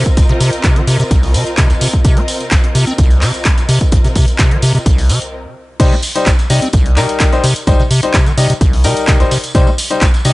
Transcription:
Already playing: string section C4 F4 A#4 D#5
0.06 kick, closed hi-hat, tambourine
0.17 acid bass C2, kick, closed hi-hat, tambourine
0.29 acid bass C3, closed hi-hat
0.40 acid bass C3, open hi-hat, tambourine
0.53 closed hi-hat, tambourine
0.64 acid bass C3, kick, clap, closed hi-hat, tambourine
0.76 acid bass D#3, closed hi-hat
0.87 acid bass C3, open hi-hat, tambourine
0.99 acid bass C3, closed hi-hat, tambourine
1.11 acid bass C2, kick, closed hi-hat, tambourine
1.23 open hi-hat, tambourine
1.34 acid bass C3, open hi-hat, tambourine
1.47 closed hi-hat, tambourine
1.57 acid bass C3, kick, clap, closed hi-hat, tambourine
1.70 acid bass C2, closed hi-hat, tambourine
1.81 acid bass C3, open hi-hat, tambourine
1.94 kick
2.04 acid bass C3, kick, closed hi-hat, tambourine
2.17 acid bass C4, closed hi-hat
2.28 open hi-hat, tambourine
2.40 closed hi-hat, tambourine
2.51 acid bass C2, kick, clap, closed hi-hat, tambourine
2.64 closed hi-hat
2.75 acid bass C3, open hi-hat, tambourine
2.87 acid bass C4, closed hi-hat, tambourine
2.98 acid bass C2, kick, closed hi-hat, tambourine
3.10 closed hi-hat, tambourine
3.21 acid bass C3, clap, open hi-hat, tambourine
3.34 closed hi-hat, tambourine
3.45 kick, clap, closed hi-hat, tambourine
3.58 closed hi-hat, tambourine
3.69 acid bass C3, open hi-hat, tambourine
3.81 kick, closed hi-hat, tambourine
3.92 acid bass C2, kick, closed hi-hat, tambourine
4.04 acid bass C3, closed hi-hat, tambourine
4.16 acid bass C3, kick, open hi-hat, tambourine
4.28 closed hi-hat, tambourine
4.39 acid bass C3, kick, clap, closed hi-hat, tambourine
4.51 acid bass D#3, closed hi-hat
4.62 acid bass C3, open hi-hat, tambourine
4.75 acid bass C3, closed hi-hat, tambourine
4.86 acid bass C2, kick, closed hi-hat, tambourine
4.98 open hi-hat, tambourine
5.09 acid bass C3, open hi-hat, tambourine
5.22 closed hi-hat, tambourine
5.80 acid bass C3, grand piano G3 D#4 C5, kick, closed hi-hat, tambourine, crash
5.92 acid bass C4, tambourine
6.02 open hi-hat, tambourine
6.15 grand piano G3 D#4 C5, closed hi-hat, tambourine
6.26 acid bass C2, kick, clap, closed hi-hat, tambourine
6.39 closed hi-hat, tambourine
6.50 acid bass C3, grand piano G3 D#4 D#5, open hi-hat, tambourine
6.62 acid bass C4, closed hi-hat, tambourine
6.73 acid bass C2, kick, closed hi-hat, tambourine
6.86 closed hi-hat
6.96 acid bass C3, grand piano G3 D#4 A#4, clap, open hi-hat, tambourine
7.09 closed hi-hat, tambourine
7.20 kick, clap, closed hi-hat, tambourine
7.33 grand piano G3 D#4 C5, closed hi-hat, tambourine
7.44 acid bass C3, open hi-hat, tambourine
7.56 closed hi-hat, tambourine
7.67 acid bass C2, grand piano G3 D#4 C5, kick, closed hi-hat, tambourine
7.79 acid bass C3, tambourine
7.91 acid bass C3, open hi-hat, tambourine
8.02 grand piano G3 D#4 C5, closed hi-hat, tambourine
8.14 acid bass C3, kick, clap, closed hi-hat, tambourine
8.26 acid bass D#3, closed hi-hat, tambourine
8.38 acid bass C3, grand piano G3 D#4 D#5, open hi-hat, tambourine
8.50 acid bass C3, closed hi-hat, tambourine
8.61 acid bass C2, kick, closed hi-hat, tambourine
8.73 open hi-hat
8.84 acid bass C3, grand piano G3 D#4 A#4, open hi-hat, tambourine
8.97 closed hi-hat, tambourine
9.07 acid bass C3, kick, clap, closed hi-hat, tambourine
9.20 acid bass C2, grand piano G3 D#4 C5, closed hi-hat, tambourine
9.31 acid bass C3, open hi-hat, tambourine
9.44 closed hi-hat, tambourine
9.55 acid bass C3, grand piano G3 D#4 C5, kick, closed hi-hat, tambourine
9.67 acid bass C4, tambourine
9.78 open hi-hat, tambourine
9.90 grand piano G3 D#4 C5, closed hi-hat, tambourine
10.01 acid bass C2, kick, clap, closed hi-hat, tambourine
10.14 closed hi-hat, tambourine
10.25 acid bass C3, grand piano G3 D#4 D#5, open hi-hat, tambourine

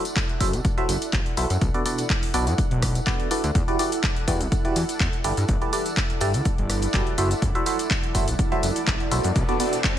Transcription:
Already playing: ambient pad E4 A4 D5 F#5
0.05 closed hi-hat, tambourine
0.16 kick, clap, closed hi-hat, tambourine
0.29 closed hi-hat
0.40 analog synth bass F#1, fm electric piano F#3 E4 F#4 A4 C5 E5, kick, open hi-hat, tambourine
0.53 analog synth bass C2, closed hi-hat, tambourine
0.65 kick, closed hi-hat, tambourine
0.78 fm electric piano F#3 E4 F#4 A4 C5 E5, closed hi-hat
0.89 analog synth bass F#1, open hi-hat, tambourine
1.02 closed hi-hat, tambourine
1.13 analog synth bass F#1, kick, clap, closed hi-hat
1.26 closed hi-hat
1.37 analog synth bass B1, fm electric piano E4 F#4 A4 C5 E5, open hi-hat, tambourine
1.50 analog synth bass F#2, closed hi-hat, tambourine
1.61 analog synth bass B1, kick, closed hi-hat, tambourine
1.74 fm electric piano B2 D4 F#4 A4 B4 D5, closed hi-hat
1.86 fm electric piano B2 D4 F#4 A4 B4 D5, open hi-hat, tambourine
1.98 closed hi-hat, tambourine
2.10 kick, clap, closed hi-hat
2.23 open hi-hat
2.34 analog synth bass B1, fm electric piano B2 D4 F#4 A4 B4 D5, open hi-hat, tambourine
2.47 analog synth bass F#2, closed hi-hat, tambourine
2.58 kick, closed hi-hat, tambourine
2.71 analog synth bass B1, closed hi-hat
2.82 kick, cross-stick, open hi-hat, tambourine
2.95 closed hi-hat, tambourine
3.06 fm electric piano B2 D4 F#4 A4 B4 D5, kick, clap, closed hi-hat, tambourine
3.20 closed hi-hat
3.31 fm electric piano E3 D4 F#4 A4 B4 D5, open hi-hat, tambourine
3.44 analog synth bass D2, closed hi-hat, tambourine
3.55 analog synth bass E2, kick, closed hi-hat, tambourine, shaker
3.68 fm electric piano E3 E4 F#4 G4 B4 D5, closed hi-hat
3.79 fm electric piano E3 E4 F#4 G4 B4 D5, open hi-hat, tambourine, shaker
3.92 closed hi-hat, tambourine, shaker
4.03 kick, clap, closed hi-hat, tambourine, shaker
4.16 closed hi-hat
4.28 analog synth bass E2, fm electric piano E3 E4 F#4 G4 B4 D5, kick, open hi-hat, tambourine, shaker
4.41 analog synth bass B1, closed hi-hat, tambourine, shaker
4.52 kick, closed hi-hat, tambourine, shaker
4.65 fm electric piano E3 E4 F#4 G4 B4 D5, closed hi-hat
4.76 analog synth bass E2, open hi-hat, tambourine, shaker
4.89 closed hi-hat, tambourine, shaker
5.00 analog synth bass E2, kick, clap, closed hi-hat, shaker
5.13 closed hi-hat
5.24 analog synth bass G1, fm electric piano G3 E4 G4 A4 B4 D5, open hi-hat, tambourine, shaker
5.37 analog synth bass G2, closed hi-hat, tambourine, shaker
5.48 analog synth bass G1, kick, closed hi-hat, tambourine, shaker
5.62 fm electric piano G3 E4 G4 A4 B4 D5, closed hi-hat
5.73 fm electric piano G3 E4 G4 A4 B4 D5, open hi-hat, tambourine, shaker
5.85 closed hi-hat, tambourine, shaker
5.97 kick, clap, closed hi-hat, shaker
6.10 closed hi-hat
6.21 analog synth bass G1, fm electric piano G3 E4 G4 A4 B4 D5, open hi-hat, tambourine, shaker
6.33 analog synth bass D2, closed hi-hat, tambourine, shaker
6.45 kick, closed hi-hat, tambourine, shaker
6.58 analog synth bass G1, closed hi-hat
6.70 cross-stick, open hi-hat, tambourine, shaker
6.82 closed hi-hat, tambourine, shaker
6.94 analog synth bass G1, fm electric piano F#3 E4 G4 A4 B4 D5, kick, clap, closed hi-hat, shaker
7.07 closed hi-hat
7.18 analog synth bass F#1, fm electric piano F#3 E4 F#4 A4 C5 E5, open hi-hat, tambourine, shaker
7.31 closed hi-hat, tambourine, shaker
7.42 analog synth bass F#1, kick, closed hi-hat, riser, shaker
7.55 fm electric piano F#3 E4 F#4 A4 C5 E5, closed hi-hat
7.66 fm electric piano F#3 E4 F#4 A4 C5 E5, open hi-hat, tambourine, shaker
7.79 closed hi-hat, tambourine, shaker
7.90 kick, clap, closed hi-hat, tambourine, shaker
8.03 closed hi-hat
8.15 analog synth bass F#1, fm electric piano F#3 E4 F#4 A4 C5 E5, kick, open hi-hat, tambourine, shaker
8.28 analog synth bass C2, closed hi-hat, tambourine, shaker
8.39 kick, closed hi-hat, tambourine, shaker
8.52 fm electric piano F#3 E4 F#4 A4 C5 E5, closed hi-hat
8.63 analog synth bass F#1, open hi-hat, tambourine, shaker
8.76 closed hi-hat, tambourine, shaker
8.87 analog synth bass F#1, kick, clap, closed hi-hat, tambourine, shaker
9.00 closed hi-hat
9.11 analog synth bass B1, fm electric piano E4 F#4 A4 C5 E5, open hi-hat, tambourine, shaker
9.23 analog synth bass F#2, closed hi-hat, tambourine, shaker
9.35 analog synth bass B1, kick, closed hi-hat, tambourine, shaker
9.49 fm electric piano B2 D4 F#4 A4 B4 D5, closed hi-hat
9.60 fm electric piano B2 D4 F#4 A4 B4 D5, open hi-hat, tambourine, shaker
9.73 closed hi-hat, tambourine, shaker
9.84 kick, clap, closed hi-hat, tambourine, shaker

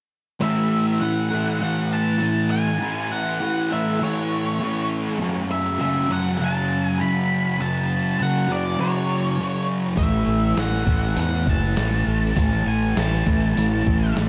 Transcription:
0.40 distorted electric guitar A2 E3 A3, lead electric guitar E5
1.00 distorted electric guitar A2 E3 A3, lead electric guitar F#5
1.30 distorted electric guitar E3 A3
1.59 distorted electric guitar A2 E3 A3
1.63 lead electric guitar F#5
1.93 lead electric guitar A5
2.18 distorted electric guitar A2 E3 A3
2.51 lead electric guitar G#5
2.79 distorted electric guitar A2 E3 A3
3.12 lead electric guitar F#5
3.40 distorted electric guitar A2 E3 A3
3.70 distorted electric guitar E3 A3, lead electric guitar E5
3.99 distorted electric guitar A2 E3 A3, lead electric guitar C#5
4.59 distorted electric guitar A2 E3 A3
5.18 distorted electric guitar F#2 C#3 F#3
5.51 lead electric guitar E5
5.79 distorted electric guitar F#2 C#3 F#3, lead electric guitar E5
6.08 distorted electric guitar C#3 F#3
6.12 lead electric guitar F#5
6.38 distorted electric guitar F#2 C#3 F#3
6.44 lead electric guitar A5
6.86 lead electric guitar G#5
6.98 distorted electric guitar F#2 C#3 F#3, lead electric guitar B5
7.59 distorted electric guitar F#2 C#3 F#3, lead electric guitar A5
8.19 distorted electric guitar F#2 C#3 F#3, lead electric guitar F#5
8.47 distorted electric guitar C#3 F#3
8.52 lead electric guitar D5
8.78 distorted electric guitar F#2 C#3 F#3, lead electric guitar C#5
9.38 distorted electric guitar F#2 C#3 F#3
9.96 fingered electric bass A1, distorted electric guitar A2 E3 A3, lead electric guitar E5, kick, open hi-hat
10.27 fingered electric bass A1
10.56 fingered electric bass A1, distorted electric guitar A2 E3 A3, lead electric guitar F#5, snare, open hi-hat
10.85 fingered electric bass A1, distorted electric guitar E3 A3, kick
11.15 fingered electric bass E2, distorted electric guitar A2 E3 A3, open hi-hat
11.20 lead electric guitar F#5
11.47 fingered electric bass F#1, lead electric guitar A5, kick
11.76 fingered electric bass A1, distorted electric guitar A2 E3 A3, snare, open hi-hat
12.07 fingered electric bass A1
12.35 fingered electric bass A1, distorted electric guitar A2 E3 A3, lead electric guitar A5, kick, open hi-hat
12.67 fingered electric bass A1, lead electric guitar G#5
12.96 fingered electric bass A1, distorted electric guitar A2 E3 A3, lead electric guitar A5, snare, open hi-hat
13.27 fingered electric bass A1, distorted electric guitar E3 A3, kick
13.55 fingered electric bass A1, distorted electric guitar A2 E3 A3, open hi-hat
13.87 fingered electric bass A1, kick
14.15 fingered electric bass A1, distorted electric guitar A2 E3, snare, open hi-hat
14.19 distorted electric guitar A3

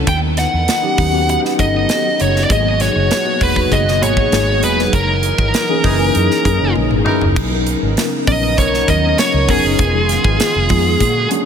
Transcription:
0.07 fingered electric bass D#2, analog synth pad D#3 B3 D#4, lead electric guitar G5, kick, closed hi-hat
0.37 lead electric guitar F#5, snare, closed hi-hat
0.54 fingered electric bass E2
0.68 snare, closed hi-hat
0.82 tine electric piano F#3 B3 C#4 D#4 G4
0.98 fingered electric bass D#2, kick, open hi-hat
1.12 tine electric piano B3 C#4 D#4 F#4 G4
1.29 lead electric guitar F#5, closed hi-hat
1.45 snare
1.57 fingered electric bass G1, tine electric piano F#3 B3 C#4 D#4 A4, lead electric guitar D#5, kick, closed hi-hat
1.89 snare, closed hi-hat
2.20 fingered electric bass F#1, lead electric guitar C#5, closed hi-hat
2.36 snare
2.44 lead electric guitar D5
2.49 fingered electric bass G#1, analog synth pad B2 F#3 G#3 F#4, tine electric piano F#3 A#3 B3 D#4 G#4, lead electric guitar D#5, kick, closed hi-hat
2.80 lead electric guitar C#5, snare, closed hi-hat
2.96 fingered electric bass F#1
3.11 snare, closed hi-hat
3.24 tine electric piano F#3 A#3 B3 D#4 F#4
3.41 fingered electric bass E1, lead electric guitar B4, kick, open hi-hat
3.56 kick
3.70 fingered electric bass F#1, tine electric piano F#3 A#3 B3 D#4 G#4, lead electric guitar D#5, kick, closed hi-hat
3.88 snare
4.01 fingered electric bass G#1, tine electric piano F#3 A#3 B3 D#4 G#4, lead electric guitar C#5, closed hi-hat
4.17 kick
4.32 fingered electric bass G#1, tine electric piano F#3 A#3 B3 D#4 G#4, snare, closed hi-hat
4.62 fingered electric bass E1, tine electric piano F#3 G#3 B3 D#4 G#4, lead electric guitar B4, closed hi-hat
4.79 snare
4.93 fingered electric bass F#1, analog synth pad E3 G#3 D#4, lead electric guitar A#4, kick, closed hi-hat
5.23 closed hi-hat
5.38 fingered electric bass G#1, kick
5.54 snare, closed hi-hat
5.69 tine electric piano E3 A#3 C#4 D#4 G#4
5.83 fingered electric bass F#1, horn section E3 D#4 G#4, kick, open hi-hat
5.98 tine electric piano E3 A#3 C#4 D#4 G#4
6.15 fingered electric bass F#2, closed hi-hat
6.31 snare
6.43 fingered electric bass F#2, tine electric piano E3 A#3 C#4 D#4 G#4, kick, closed hi-hat
6.61 fingered electric bass F#1
6.75 fingered electric bass A#1, high tom
6.91 fingered electric bass G#1, mid tom
7.05 horn section E3 D#4 A#4, mid tom
7.21 fingered electric bass F#1, floor tom
7.36 fingered electric bass B1, analog synth pad C#3 B3 D#4 A#4, kick, crash
7.50 tine electric piano F#3 B3 C#4 D#4 A#4
7.67 closed hi-hat
7.82 fingered electric bass G#1
7.97 snare, closed hi-hat
8.27 fingered electric bass A#1, tine electric piano F#3 B3 C#4 D#4 A#4, lead electric guitar D#5, kick, open hi-hat
8.58 fingered electric bass B1, lead electric guitar C#5, kick, closed hi-hat
8.74 snare
8.88 fingered electric bass D#2, tine electric piano F#3 B3 C#4 D#4 A#4, lead electric guitar D#5, kick, closed hi-hat
9.18 lead electric guitar C#5, snare, closed hi-hat
9.34 fingered electric bass C#2
9.48 fingered electric bass E1, tine electric piano F#3 B3 C#4 D#4 A#4, lead electric guitar G#4, kick, open hi-hat
9.64 fingered electric bass F#1
9.79 fingered electric bass F1, analog synth pad D#3 G#3 F4, kick, closed hi-hat
9.94 tine electric piano F3 G#3 B3 D#4 G#4
10.09 snare, closed hi-hat
10.24 fingered electric bass G#1, kick
10.40 snare, closed hi-hat
10.56 fingered electric bass F1
10.69 fingered electric bass F2, tine electric piano F3 G#3 B3 D#4 G#4, kick, open hi-hat
11.00 fingered electric bass A#2, analog synth pad D3 A#3 F#4, kick, closed hi-hat
11.30 tine electric piano F#3 A#3 C#4 D4 G#4, closed hi-hat

